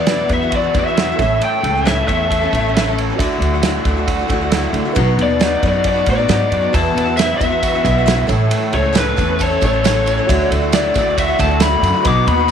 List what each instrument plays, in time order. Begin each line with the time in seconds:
Already playing: upright bass E2, overdriven electric guitar E2 B3, reed electric piano F#4 B4 E5, tonewheel organ B4 F#5 E6, lead electric guitar D5
0.07 steel-string acoustic guitar E2 B2 E3 B3 E4 F#4, snare, ride
0.28 upright bass E2, steel-string acoustic guitar E3, overdriven electric guitar B3, kick, ride
0.32 steel-string acoustic guitar B3 E4 F#4, lead electric guitar E5
0.42 steel-string acoustic guitar E3 B3 E4 F#4
0.50 overdriven electric guitar F#4, kick, ride
0.56 lead electric guitar D5
0.62 steel-string acoustic guitar E3 B3 E4 F#4
0.74 upright bass E2, steel-string acoustic guitar E3 B3 E4 F#4, kick, ride
0.79 lead electric guitar E5
0.88 steel-string acoustic guitar E3 B3 E4 F#4
0.94 overdriven electric guitar E4, snare, ride
0.98 steel-string acoustic guitar E2 B2 E3 B3 E4 F#4
1.12 steel-string acoustic guitar E3 B3 E4 F#4, reed electric piano A4
1.17 upright bass A1, overdriven electric guitar A2, tonewheel organ C#5 A5, reed electric piano C#5 E5, kick, ride
1.22 steel-string acoustic guitar A2 E3 A3 C#4 A4
1.38 overdriven electric guitar A2, ride
1.45 lead electric guitar G5
1.60 upright bass C#2, overdriven electric guitar A3, ride
1.75 steel-string acoustic guitar A3 C#4 A4
1.85 steel-string acoustic guitar A2 E3 A3 C#4 A4, lead electric guitar E5, snare, ride
2.07 upright bass E2, steel-string acoustic guitar E3 A3 C#4 A4, lead electric guitar E5, kick, ride
2.28 overdriven electric guitar A4, kick, ride
2.41 steel-string acoustic guitar A3 C#4 A4
2.53 upright bass A1, steel-string acoustic guitar E3 A3 C#4 A4, kick, ride
2.66 steel-string acoustic guitar A3 C#4 A4
2.73 overdriven electric guitar C#4, snare, ride
2.78 steel-string acoustic guitar A2 E3 A3 C#4 A4
2.89 steel-string acoustic guitar A3 C#4 A4
2.95 overdriven electric guitar E3, ride
3.10 steel-string acoustic guitar A3 C#4 A4
3.16 upright bass D2, reed electric piano F#4 D5 E5, tonewheel organ D5 F#5, kick
3.20 steel-string acoustic guitar D3 A3 E4 F#4, ride
3.39 upright bass D2, overdriven electric guitar A3, ride
3.54 steel-string acoustic guitar A3 E4 F#4
3.63 steel-string acoustic guitar D3 A3 E4 F#4, snare, ride
3.85 upright bass D2, steel-string acoustic guitar D3 A3 E4 F#4, kick, ride
3.97 steel-string acoustic guitar A3 E4 F#4
4.05 overdriven electric guitar F#4, kick, ride
4.19 steel-string acoustic guitar A3 E4 F#4
4.28 upright bass D2, steel-string acoustic guitar D3 A3 E4, kick, ride
4.32 steel-string acoustic guitar F#4
4.41 steel-string acoustic guitar A3 E4 F#4
4.52 steel-string acoustic guitar D3 A3 E4 F#4, snare, ride
4.63 steel-string acoustic guitar A3 E4 F#4
4.73 upright bass D2, overdriven electric guitar D3, ride
4.85 steel-string acoustic guitar A3 E4 F#4
4.92 steel-string acoustic guitar B2 F#3 B3, reed electric piano D#4 F#4 B4, tonewheel organ B4, ride
4.96 upright bass B1, steel-string acoustic guitar D#4 F#4, kick
5.17 upright bass D#2, overdriven electric guitar B3, ride
5.23 lead electric guitar D5
5.29 steel-string acoustic guitar B3 D#4 F#4
5.39 steel-string acoustic guitar B2 F#3 B3 D#4 F#4, snare, ride
5.63 upright bass F#2, steel-string acoustic guitar F#3 B3 D#4 F#4, kick, ride
5.68 lead electric guitar D5
5.73 steel-string acoustic guitar B3 D#4 F#4
5.84 overdriven electric guitar F#4, lead electric guitar D5, kick, ride
5.94 steel-string acoustic guitar B3 D#4 F#4
6.06 upright bass A2, steel-string acoustic guitar F#3 B3 D#4 F#4, kick, ride
6.10 lead electric guitar D5
6.18 steel-string acoustic guitar B3 D#4 F#4
6.28 upright bass G#2, steel-string acoustic guitar B2 F#3 B3 D#4 F#4, snare, ride
6.39 steel-string acoustic guitar B3 D#4 F#4
6.51 upright bass F#2, overdriven electric guitar F#3, ride
6.61 steel-string acoustic guitar B3 D#4 F#4
6.72 steel-string acoustic guitar E2 B2 E3 B3 E4 F#4, upright bass E2, reed electric piano F#4 B4 E5, tonewheel organ F#5 E6, lead electric guitar A5, kick, ride
6.95 upright bass E2, overdriven electric guitar B3, ride, tambourine
7.06 steel-string acoustic guitar E3 B3 E4 F#4
7.17 steel-string acoustic guitar E2 B2 E3 B3 E4 F#4, lead electric guitar E5, snare, ride, tambourine
7.38 upright bass E2, steel-string acoustic guitar E3 B3 E4, lead electric guitar E5, kick, ride, tambourine
7.42 steel-string acoustic guitar F#4
7.50 steel-string acoustic guitar E3 B3 E4 F#4
7.62 overdriven electric guitar F#4, kick, ride, tambourine
7.74 steel-string acoustic guitar E3 B3 E4 F#4
7.84 upright bass B1, steel-string acoustic guitar E3 B3 E4 F#4, kick, ride, tambourine
7.98 steel-string acoustic guitar E3 B3 E4 F#4
8.06 steel-string acoustic guitar E2 B2 E3 B3 E4 F#4, snare, ride, tambourine
8.18 steel-string acoustic guitar E3 B3 E4 F#4
8.27 upright bass A1, steel-string acoustic guitar A2 E3 A3 C#4 A4, reed electric piano A4 C#5 E5, tonewheel organ C#5 A5, kick, ride, tambourine
8.49 overdriven electric guitar A2, ride
8.72 upright bass C#2, overdriven electric guitar A3, lead electric guitar C#5, ride, tambourine
8.83 steel-string acoustic guitar A3 C#4 A4
8.93 steel-string acoustic guitar A2 E3 A3 C#4 A4, snare, ride, tambourine
8.97 lead electric guitar B4
9.16 upright bass E2, steel-string acoustic guitar E3 A3 C#4 A4, kick, ride, tambourine
9.27 steel-string acoustic guitar A3 C#4 A4
9.39 overdriven electric guitar A4, kick, ride, tambourine
9.43 lead electric guitar C#5
9.50 steel-string acoustic guitar A3 C#4 A4
9.61 upright bass A1, steel-string acoustic guitar E3 A3 C#4 A4, kick, ride, tambourine
9.66 lead electric guitar C#5
9.73 steel-string acoustic guitar A3 C#4 A4
9.84 steel-string acoustic guitar A2 E3 A3 C#4 A4, snare, ride, tambourine
9.95 steel-string acoustic guitar A3 C#4 A4
10.06 overdriven electric guitar E3, ride, tambourine
10.17 steel-string acoustic guitar A3 C#4 A4
10.27 upright bass D2, steel-string acoustic guitar D3 A3 E4 F#4, reed electric piano F#4 D5 E5, tonewheel organ D5 F#5, kick, ride
10.50 upright bass D2, overdriven electric guitar A3, ride, tambourine
10.62 steel-string acoustic guitar A3 E4 F#4
10.72 steel-string acoustic guitar D3 A3 E4 F#4, lead electric guitar D5, snare, ride, tambourine
10.94 upright bass D2, steel-string acoustic guitar D3 A3, kick, ride, tambourine
10.99 steel-string acoustic guitar E4 F#4
11.09 steel-string acoustic guitar A3 E4 F#4
11.17 overdriven electric guitar F#4, lead electric guitar E5, kick, ride, tambourine
11.28 steel-string acoustic guitar A3 E4 F#4
11.38 upright bass D2, steel-string acoustic guitar D3 A3 E4 F#4, reed electric piano F#4 D5 E5, lead electric guitar A5, kick, ride, tambourine
11.48 steel-string acoustic guitar A3 E4 F#4
11.60 steel-string acoustic guitar D3 A3 E4 F#4, lead electric guitar B5, snare, ride, tambourine
11.70 steel-string acoustic guitar A3 E4 F#4
11.82 upright bass F#2, overdriven electric guitar D3, ride, tambourine
11.95 steel-string acoustic guitar A3 E4 F#4
12.02 steel-string acoustic guitar B2 F#3, reed electric piano F#4 B4 D#5, kick, ride
12.06 upright bass B1, steel-string acoustic guitar B3 D#4 F#4, tonewheel organ B4 F#5 D#6, lead electric guitar D6, tambourine
12.27 upright bass D#2, overdriven electric guitar B3, lead electric guitar B5, ride
12.38 steel-string acoustic guitar B3 D#4 F#4